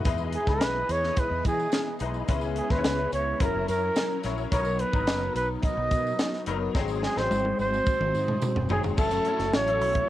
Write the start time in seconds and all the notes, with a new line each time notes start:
0.05 E2 E3 G#3 B3 D#4 E4 G#4 B4 D#5, kick, closed hi-hat, tambourine
0.18 tambourine
0.33 G#4, closed hi-hat
0.47 C#2 G#3 D#4 E4 B4, kick, snare, tambourine
0.61 B1, snare, closed hi-hat, tambourine
0.89 E2 C#5, closed hi-hat, tambourine
1.04 snare
1.17 B4, kick, closed hi-hat, tambourine
1.31 E2
1.45 E3 G#4, kick, closed hi-hat, tambourine
1.60 tambourine
1.72 snare, closed hi-hat, tambourine
1.99 B1 G#3 D#4 E4 B4, closed hi-hat, tambourine
2.14 tambourine
2.28 C#2 C#3 G#3 B3 C#4 E4 B4, kick, closed hi-hat, tambourine
2.41 tambourine
2.56 G#4, closed hi-hat
2.70 D#2 G#3 C#4 E4 B4 C5, kick, snare, tambourine
2.78 C#5
2.84 C#2, snare, closed hi-hat, tambourine
3.12 C#2 C#5, closed hi-hat, tambourine
3.40 F#1 F#3 C#4 E4 A#4, kick, closed hi-hat, tambourine
3.54 F#1
3.68 F#2 A#4, closed hi-hat, tambourine
3.96 snare, closed hi-hat, tambourine
4.23 A#1 F#3 C#4 E4 C#5, snare, closed hi-hat, tambourine
4.38 tambourine
4.51 B1 F#3 B3 D#4 A#4 C#5, kick, closed hi-hat, tambourine
4.65 tambourine
4.79 B4, closed hi-hat
4.93 G#1 F#3 B3 D#4 A#5, kick, tambourine
5.07 F#1, snare, closed hi-hat, tambourine
5.35 B1 B4, closed hi-hat, tambourine
5.62 D#5, kick, closed hi-hat, tambourine
5.77 B1
5.91 B2, kick, closed hi-hat, tambourine
6.07 tambourine
6.19 snare, closed hi-hat, tambourine
6.33 snare
6.46 F#1 F#3 B3 D#4 A#4, closed hi-hat, tambourine
6.75 G#1 F#3 G#3 C4 D#4 F#4 G#4, kick, snare, tambourine
6.88 tambourine
7.03 G#4, snare
7.16 A1 F#3 A3 D#4 G#4 C5, snare
7.23 C4
7.30 G#1, high tom, tambourine
7.45 high tom
7.58 G#1 C5, tambourine
7.73 tambourine
7.86 kick, tambourine
8.00 G#1, mid tom
8.14 G#2, tambourine
8.28 mid tom
8.41 mid tom, tambourine
8.56 E1, floor tom
8.69 F#1 F#3 C4 D#4 G#4, floor tom, tambourine
8.83 E1, floor tom, tambourine
8.97 F#1 F#3 A3 C#4 E4 A4, kick, crash, tambourine
9.11 closed hi-hat, tambourine
9.25 F#3 C#4 E4 A4, closed hi-hat
9.39 F#1, snare, closed hi-hat, tambourine
9.54 A1 C#5, snare, tambourine
9.67 F#3 C#4 E4 A4, closed hi-hat
9.81 B1, open hi-hat, tambourine
9.95 kick, closed hi-hat